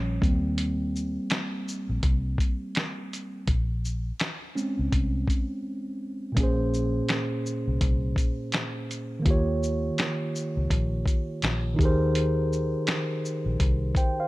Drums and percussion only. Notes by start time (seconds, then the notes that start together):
0.22 kick, closed hi-hat, shaker
0.58 closed hi-hat
0.96 shaker
1.30 finger snap, snare, closed hi-hat
1.68 shaker
2.03 kick, closed hi-hat
2.38 kick, closed hi-hat, shaker
2.75 finger snap, snare, closed hi-hat
3.13 closed hi-hat, shaker
3.47 kick, closed hi-hat
3.85 shaker
4.20 finger snap, snare, closed hi-hat
4.57 shaker
4.92 kick, closed hi-hat
5.28 kick, closed hi-hat, shaker
6.37 kick, closed hi-hat
6.74 shaker
7.09 finger snap, snare, closed hi-hat
7.46 shaker
7.81 kick, closed hi-hat
8.16 kick, closed hi-hat, shaker
8.52 finger snap, snare, closed hi-hat
8.91 closed hi-hat, shaker
9.26 kick, closed hi-hat
9.63 shaker
9.98 finger snap, snare, closed hi-hat
10.36 shaker
10.70 kick, closed hi-hat
11.06 kick, closed hi-hat, shaker
11.42 finger snap, snare, closed hi-hat
11.79 kick, closed hi-hat, shaker
12.15 closed hi-hat
12.53 shaker
12.87 finger snap, snare, closed hi-hat
13.25 shaker
13.60 kick, closed hi-hat
13.95 kick, closed hi-hat, shaker